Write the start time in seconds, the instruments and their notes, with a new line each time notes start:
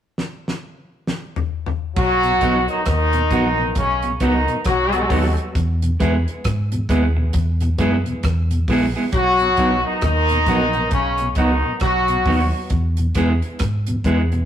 0.18 snare
0.48 snare
1.07 snare
1.36 floor tom
1.66 floor tom
1.96 fingered electric bass B1, horn section F#3 F#4, kick, crash
2.23 tonewheel organ B2, closed hi-hat
2.41 fingered electric bass B1, clean electric guitar F#3 B3 D#4 F#4, tonewheel organ F#3 B3 D#4, kick, closed hi-hat
2.68 horn section D#3 D#4, closed hi-hat
2.85 fingered electric bass D#2, horn section D#3 D#4, kick, cross-stick, closed hi-hat
3.13 tonewheel organ B2, closed hi-hat
3.31 fingered electric bass A#1, clean electric guitar F#3 B3 D#4 F#4, tonewheel organ F#3 B3 D#4, kick, closed hi-hat
3.58 tonewheel organ B2, muted clean electric guitar stroke
3.75 fingered electric bass B1, horn section C#3 C#4, kick, closed hi-hat
4.02 tonewheel organ B2, muted clean electric guitar stroke, closed hi-hat
4.20 fingered electric bass C#2, horn section D#3 D#4, clean electric guitar F#3 B3 D#4 F#4, tonewheel organ F#3 B3 D#4, kick, closed hi-hat
4.48 tonewheel organ B2, closed hi-hat
4.64 fingered electric bass B1, horn section F#3 F#4, kick, cross-stick, closed hi-hat
4.92 tonewheel organ B2, closed hi-hat
5.10 fingered electric bass D#2, tonewheel organ F#3 B3 D#4, clean electric guitar F#3 B3 D#4 F#4, kick, open hi-hat
5.37 closed hi-hat
5.55 fingered electric bass E2, kick, closed hi-hat
5.82 tonewheel organ E2 B2, closed hi-hat
6.00 fingered electric bass E2, tonewheel organ G#3 B3 E4, clean electric guitar G#3 B3 E4 G#4, kick, closed hi-hat
6.28 closed hi-hat
6.44 fingered electric bass G#2, kick, cross-stick, closed hi-hat
6.72 tonewheel organ E2 B2, closed hi-hat
6.89 fingered electric bass D#2, clean electric guitar G#3 B3 E4 G#4, tonewheel organ G#3 B3 E4, kick, closed hi-hat
7.16 tonewheel organ E2 B2, muted clean electric guitar stroke
7.33 fingered electric bass E2, kick, closed hi-hat
7.60 tonewheel organ E2 B2, muted clean electric guitar stroke, closed hi-hat
7.78 fingered electric bass F#2, tonewheel organ G#3 B3 E4, clean electric guitar G#3 B3 E4 G#4, kick, closed hi-hat
8.06 tonewheel organ E2 B2, closed hi-hat
8.23 fingered electric bass E2, kick, cross-stick, closed hi-hat
8.50 tonewheel organ E2 B2, closed hi-hat
8.68 fingered electric bass A#1, tonewheel organ G#3 B3 E4, clean electric guitar G#3 B3 E4 G#4, kick, open hi-hat
8.96 clean electric guitar G#3 B3 E4 G#4
9.12 fingered electric bass B1, horn section F#3 F#4, kick, closed hi-hat
9.39 tonewheel organ B2, closed hi-hat
9.57 fingered electric bass B1, tonewheel organ F#3 B3 D#4, clean electric guitar F#3 B3 D#4 F#4, kick, closed hi-hat
9.84 horn section D#3 D#4
10.01 fingered electric bass D#2, horn section D#3 D#4, kick, cross-stick, closed hi-hat
10.29 tonewheel organ B2, closed hi-hat
10.46 fingered electric bass A#1, clean electric guitar F#3 B3 D#4 F#4, tonewheel organ F#3 B3 D#4, kick, closed hi-hat
10.73 tonewheel organ B2, muted clean electric guitar stroke, closed hi-hat
10.91 fingered electric bass B1, horn section C#3 C#4, kick, closed hi-hat
11.18 tonewheel organ B2, muted clean electric guitar stroke, closed hi-hat
11.35 fingered electric bass C#2, horn section D#3 D#4, clean electric guitar F#3 B3 D#4 F#4, tonewheel organ F#3 B3, kick, closed hi-hat
11.39 tonewheel organ D#4
11.65 tonewheel organ B2
11.80 fingered electric bass B1, horn section F#3 F#4, kick, cross-stick, closed hi-hat
12.08 tonewheel organ B2, closed hi-hat
12.25 fingered electric bass D#2, clean electric guitar F#3 B3 D#4 F#4, tonewheel organ F#3 B3 D#4, kick, open hi-hat
12.70 fingered electric bass E2, kick, closed hi-hat
12.97 tonewheel organ E2 B2, closed hi-hat
13.15 fingered electric bass E2, clean electric guitar G#3 B3 E4 G#4, tonewheel organ G#3 B3 E4, kick, closed hi-hat
13.42 closed hi-hat
13.59 fingered electric bass G#2, kick, cross-stick, closed hi-hat
13.87 tonewheel organ E2 B2, closed hi-hat
14.04 fingered electric bass E2, tonewheel organ G#3 B3 E4, clean electric guitar G#3 B3 E4 G#4, kick, closed hi-hat
14.32 tonewheel organ E2 B2, muted clean electric guitar stroke, closed hi-hat